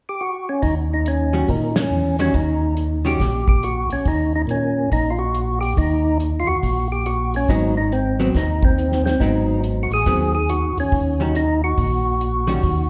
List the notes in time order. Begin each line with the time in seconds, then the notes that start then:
0.09 G4
0.21 F#4
0.49 C#4
0.62 D#2 D#4, kick, open hi-hat
0.94 D#4
1.06 C#4, closed hi-hat
1.33 D#3 G3 C#4 F#4
1.48 A#2 D#4, kick, open hi-hat
1.76 C#4, snare, ride
1.90 E2
2.19 D#3 G3 C#4 F#4, open hi-hat
2.34 D#2 D#4, kick, open hi-hat
2.77 closed hi-hat
3.05 D#3 G3 C#4 F#4 G4, open hi-hat
3.19 A#1, kick, snare, open hi-hat
3.48 G4, kick
3.63 F#4, closed hi-hat
3.90 A#1 C#4, open hi-hat
4.05 D#2 D#4, kick, open hi-hat
4.35 D#4
4.47 A#2 C#4, closed hi-hat
4.92 A#1 D#4, kick, open hi-hat
5.10 F4
5.19 F#4
5.35 closed hi-hat
5.61 G4, open hi-hat
5.77 D#2 D#4, kick, open hi-hat
6.20 closed hi-hat
6.40 F4
6.47 D#2 F#4
6.63 A#1, kick, open hi-hat
6.92 G4
7.06 F#4, closed hi-hat
7.34 C#4, open hi-hat
7.48 G#1 F#3 B3 C4 D#4, kick, open hi-hat
7.77 D#4
7.92 C4, closed hi-hat
8.20 F#3 B3 C4
8.34 D#2 D#4, kick, snare, open hi-hat
8.63 C4, kick
8.78 closed hi-hat
8.92 snare
9.06 C4, snare
9.20 G#1 F#3 B3 C4 D#4, kick, open hi-hat
9.64 closed hi-hat
9.83 F#4
9.91 A1 G#4, open hi-hat
10.05 D#2 F#3 B3 C4, kick, open hi-hat
10.35 G#4
10.49 F#4, closed hi-hat
10.76 D#2 C#4, open hi-hat
10.92 D#2, kick, open hi-hat
11.20 D#3 G3 C#4 D#4 F#4
11.35 D#4, closed hi-hat
11.64 F#4
11.78 A#1, kick, open hi-hat
12.21 closed hi-hat
12.47 D#3 G3 C#4 F#4, open hi-hat
12.63 D#2, kick, open hi-hat